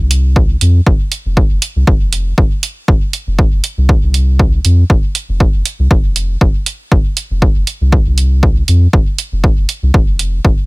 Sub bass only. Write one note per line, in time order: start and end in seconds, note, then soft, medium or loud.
0.00 0.56 C2 medium
0.61 0.80 F2 loud
0.86 0.97 F1 loud
1.25 1.43 F1 medium
1.50 1.59 F1 medium
1.76 1.84 C2 medium
1.87 2.33 F1 loud
2.38 2.48 F1 loud
2.88 2.98 F1 loud
3.27 3.45 F1 medium
3.52 3.61 F1 medium
3.77 3.95 C2 medium
4.02 4.60 C2 medium
4.65 4.84 F2 loud
4.90 5.00 F1 medium
5.29 5.47 F1 medium
5.54 5.62 F1 medium
5.79 5.88 C2 medium
5.91 6.36 F1 loud
6.41 6.51 F1 loud
6.92 7.02 F1 loud
7.30 7.48 F1 loud
7.56 7.64 F1 medium
7.81 7.99 C2 medium
8.06 8.63 C2 medium
8.68 8.87 F2 medium
8.93 9.03 F1 loud
9.32 9.50 F1 loud
9.57 9.66 F1 medium
9.82 9.91 C2 medium
9.94 10.40 F1 medium
10.45 10.55 F1 loud